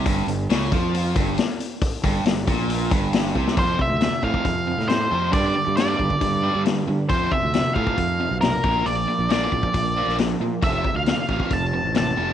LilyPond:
<<
  \new Staff \with { instrumentName = "Lead electric guitar" } { \time 4/4 \key f \lydian \tempo 4 = 136 r1 | r1 | c''8 e''4 f''4. c''4 | d''4 d''2 r4 |
c''8 e''4 f''4. bes'4 | d''4 d''2 r4 | e''8. f''16 f''4 a''4 a''4 | }
  \new Staff \with { instrumentName = "Overdriven electric guitar" } { \clef bass \time 4/4 \key f \lydian g,8 g,8 des8 f4 g,8 r4 | r8 g,8 g,8 bes,4 g,4 c8 | <f, c f>8 <f, c>8 <f, c>8 <f, c f>8 <f, c>8 <f, c>8 <f, c>8 <f, c f>8 | <g, d g>8 <g, d>8 <g, d g>8 <g, d>8 <g, d>8 <g, d g>8 <g, d>8 <g, d>8 |
<f, c f>8 <f, c>8 <f, c>8 <f, c f>8 <f, c>8 <f, c>8 <f, c>8 <bes, f bes>8 | <bes, f>8 <bes, f>8 <bes, f bes>8 <bes, f>8 <bes, f>8 <bes, f bes>8 <bes, f>8 <bes, f>8 | <f, c f>8 <f, c>8 <f, c>8 <f, c f>8 <f, c>8 <f, c>8 <f, c>8 <f, c f>8 | }
  \new Staff \with { instrumentName = "Fingered electric bass" } { \clef bass \time 4/4 \key f \lydian g,,8 g,,8 des,8 f,4 g,,8 r4 | r8 g,,8 g,,8 bes,,4 g,,4 c,8 | f,8 r16 d,8 r16 a,16 r16 f,8. a,8. f,8 | g,8 r16 g,8. g,16 r16 g,8. g,8. g,16 r16 |
f,8 r16 d,8 r16 a,16 r16 f,8. b,,8. bes,,8 | bes,,8 r16 bes,,8. bes,,16 r16 bes,,8. bes,,8. bes,16 r16 | f,,8 r16 d,8 r16 a,,16 r16 f,,8. a,,8. f,,8 | }
  \new DrumStaff \with { instrumentName = "Drums" } \drummode { \time 4/4 <hho bd>8 hho8 <hho sn>8 <hho bd>8 hho8 <hho bd>8 <hho sn>8 hho8 | <hho bd>8 <hho bd>8 <hho sn>8 <hho bd>8 hho8 <hho bd>8 <hho sn>16 sn16 bd16 sn16 | <hho bd>8 bd8 <hho sn>8 bd16 bd16 <hho bd>8. sn16 <hho sn>4 | <hho bd>4 <hho sn>8 bd16 bd16 <hho bd>4 <hho sn>4 |
<hho bd>8 bd8 <hho sn>8 bd16 bd16 <hho bd>4 <hho sn>8 bd8 | hho4 <hho sn>8 bd16 bd16 <hho bd>8. sn16 <hho sn>4 | <hho bd>8 bd8 <hho sn>8 bd16 bd16 <hho bd>4 <hho sn>4 | }
>>